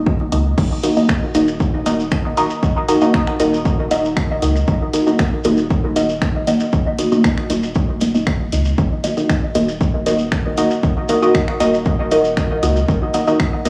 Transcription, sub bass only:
Already playing: D#1
0.32 C#2
0.58 D#1
1.35 D#1
2.63 D#1
3.40 D#1
4.42 C#2
4.68 D#1
5.45 D#1
6.73 D#1
7.50 D#1
8.52 C#2
8.78 D#1
9.55 D#1
10.83 D#1
11.60 D#1
12.63 C#2
12.88 D#1
13.65 D#1

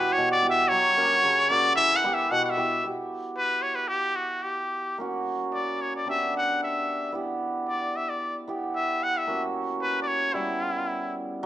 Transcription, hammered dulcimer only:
Already playing: B2 E3
0.18 B2
0.42 B3 E4 G4
0.71 F#3
0.97 A#3 C#4 F#4
1.23 C#3
1.49 A#3 C#4 F#4
1.76 E3
2.04 B3 E4 G4
2.31 B2
2.57 B3 E4 G4
2.84 B3 E4 G4
4.98 A#3 C#4 F#4
6.05 B3 D4 G4
7.12 B3 E4 G4
8.48 B3 E4 G4
9.27 A#3 C#4 F#4
10.33 G3 B3 E4

